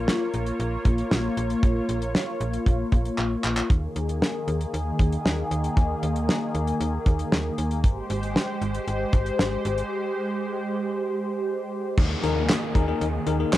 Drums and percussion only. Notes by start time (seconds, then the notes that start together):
0.08 snare
0.34 closed hi-hat
0.47 closed hi-hat
0.60 closed hi-hat
0.85 kick, closed hi-hat
0.98 closed hi-hat
1.11 snare
1.37 closed hi-hat
1.50 closed hi-hat
1.63 kick, closed hi-hat
1.89 closed hi-hat
2.02 closed hi-hat
2.15 snare
2.40 closed hi-hat
2.53 closed hi-hat
2.66 kick, closed hi-hat
2.92 kick, closed hi-hat
3.05 closed hi-hat
3.18 clap
3.44 clap
3.57 clap
3.70 kick, closed hi-hat
3.96 closed hi-hat
4.09 closed hi-hat
4.22 snare
4.48 closed hi-hat
4.61 closed hi-hat
4.74 closed hi-hat
4.99 kick, closed hi-hat
5.12 closed hi-hat
5.26 snare
5.51 closed hi-hat
5.64 closed hi-hat
5.77 kick, closed hi-hat
6.03 closed hi-hat
6.16 closed hi-hat
6.29 snare
6.55 closed hi-hat
6.67 closed hi-hat
6.81 closed hi-hat
7.06 kick, closed hi-hat
7.19 closed hi-hat
7.32 snare
7.58 closed hi-hat
7.71 closed hi-hat
7.84 kick, closed hi-hat
8.10 closed hi-hat
8.23 closed hi-hat
8.36 snare
8.62 closed hi-hat
8.74 closed hi-hat
8.88 closed hi-hat
9.13 kick, closed hi-hat
9.26 closed hi-hat
9.39 snare
9.65 closed hi-hat
9.78 closed hi-hat
11.98 kick, crash
12.24 closed hi-hat
12.49 snare, clap, closed hi-hat
12.75 kick, closed hi-hat
13.01 closed hi-hat
13.27 closed hi-hat
13.53 snare, clap, closed hi-hat